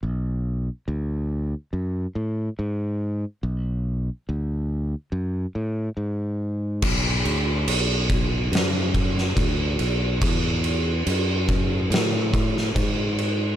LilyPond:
<<
  \new Staff \with { instrumentName = "Fingered electric bass" } { \clef bass \time 4/4 \key b \dorian \tempo 4 = 71 b,,4 d,4 fis,8 a,8 gis,4 | b,,4 d,4 fis,8 a,8 gis,4 | b,,8 d,8 b,,4 fis,4 d,8 b,,8 | e,4 fis,4 a,4 gis,4 | }
  \new DrumStaff \with { instrumentName = "Drums" } \drummode { \time 4/4 r4 r4 r4 r4 | r4 r4 r4 r4 | <cymc bd>8 cymc8 cymc8 <cymc bd>8 <cymc sn>8 <cymc bd>16 sn16 <cymc bd>8 cymc8 | <cymc bd>8 cymc8 cymc8 <cymc bd>8 <cymc sn>8 <cymc bd>16 sn16 <cymc bd>8 cymc8 | }
>>